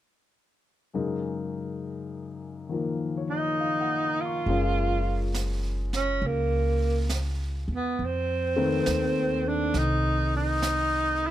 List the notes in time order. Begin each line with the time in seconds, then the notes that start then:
0.94 F#2 C#3 G#3 D#4 A#4
2.69 D#3 F3 A#3 A#4
3.17 C#5
3.30 D#4
3.39 D#5
3.60 F5
3.81 F#5
4.04 A#5
4.21 F4
4.25 C#6
4.46 F#1 G#3 C#4 F4 A#4, brush sweep
5.34 snare, hi-hat pedal
5.93 C#4, snare
6.22 C#2, brush sweep
6.26 A#3
7.10 snare, hi-hat pedal
7.68 E2
7.75 B3
7.97 F2, brush sweep
8.05 C4
8.56 D#3 A3 C4 B4
8.86 D#2, snare, hi-hat pedal
9.48 D4
9.74 C2 D#4, brush sweep, snare
10.36 D#4
10.62 snare, hi-hat pedal
11.27 E4